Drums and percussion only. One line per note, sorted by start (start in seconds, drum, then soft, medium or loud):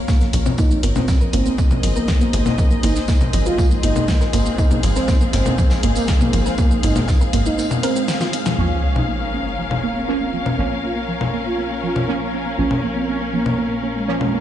0.08 kick loud
0.08 snare loud
0.08 tambourine medium
0.08 shaker medium
0.21 snare soft
0.21 shaker medium
0.33 open hi-hat medium
0.33 tambourine medium
0.46 low conga medium
0.46 shaker medium
0.58 kick loud
0.58 tambourine medium
0.58 shaker medium
0.71 shaker medium
0.83 open hi-hat loud
0.83 tambourine medium
0.96 snare soft
0.96 low conga loud
0.96 shaker medium
1.08 kick loud
1.08 snare loud
1.08 tambourine medium
1.08 shaker medium
1.21 shaker medium
1.33 open hi-hat medium
1.33 tambourine medium
1.46 shaker medium
1.58 kick loud
1.58 tambourine medium
1.58 shaker medium
1.71 low conga loud
1.71 shaker medium
1.83 open hi-hat loud
1.83 tambourine medium
1.96 shaker medium
2.08 kick loud
2.08 snare loud
2.08 tambourine medium
2.08 shaker medium
2.21 shaker medium
2.33 open hi-hat medium
2.33 tambourine medium
2.46 snare soft
2.46 low conga medium
2.46 shaker medium
2.58 kick loud
2.58 tambourine medium
2.58 shaker medium
2.71 shaker medium
2.83 open hi-hat loud
2.83 tambourine medium
2.96 snare soft
2.96 shaker medium
3.08 kick loud
3.08 snare loud
3.08 tambourine medium
3.08 shaker medium
3.21 low conga loud
3.21 shaker medium
3.33 open hi-hat medium
3.33 tambourine medium
3.46 shaker medium
3.58 kick loud
3.58 tambourine loud
3.58 shaker medium
3.71 shaker medium
3.83 open hi-hat loud
3.83 tambourine medium
3.96 low conga medium
3.96 shaker medium
4.08 kick loud
4.08 snare loud
4.08 tambourine medium
4.08 shaker medium
4.21 snare medium
4.21 shaker medium
4.33 open hi-hat medium
4.33 tambourine medium
4.46 shaker medium
4.58 kick loud
4.58 tambourine medium
4.58 shaker medium
4.71 low conga medium
4.71 shaker medium
4.83 open hi-hat loud
4.83 tambourine medium
4.96 snare soft
4.96 shaker medium
5.08 kick loud
5.08 snare loud
5.08 tambourine medium
5.08 shaker medium
5.21 shaker medium
5.33 snare loud
5.33 open hi-hat medium
5.33 tambourine medium
5.46 low conga loud
5.46 shaker medium
5.58 kick loud
5.58 tambourine medium
5.58 shaker medium
5.70 snare loud
5.70 tambourine medium
5.70 shaker medium
5.83 open hi-hat loud
5.95 tambourine medium
5.95 shaker medium
6.08 kick loud
6.08 snare loud
6.08 tambourine medium
6.08 shaker medium
6.21 low conga loud
6.21 shaker medium
6.33 open hi-hat medium
6.33 tambourine medium
6.46 snare soft
6.46 shaker medium
6.58 kick loud
6.58 tambourine medium
6.58 shaker medium
6.71 shaker medium
6.83 open hi-hat loud
6.83 tambourine medium
6.96 snare soft
6.96 low conga medium
6.96 shaker medium
7.08 kick loud
7.08 snare loud
7.08 tambourine medium
7.08 shaker medium
7.21 shaker medium
7.33 open hi-hat medium
7.33 tambourine medium
7.46 shaker medium
7.58 tambourine medium
7.58 shaker medium
7.71 low conga loud
7.71 shaker medium
7.83 open hi-hat loud
7.83 tambourine medium
7.96 shaker medium
8.08 snare loud
8.08 tambourine medium
8.08 shaker medium
8.21 snare medium
8.21 shaker medium
8.33 open hi-hat medium
8.33 tambourine medium
8.46 snare loud
8.46 low conga medium
8.46 shaker medium
8.96 low conga medium
9.71 low conga medium
10.46 low conga medium
11.21 low conga medium
11.96 low conga medium
12.71 low conga medium
13.46 low conga medium
14.21 low conga medium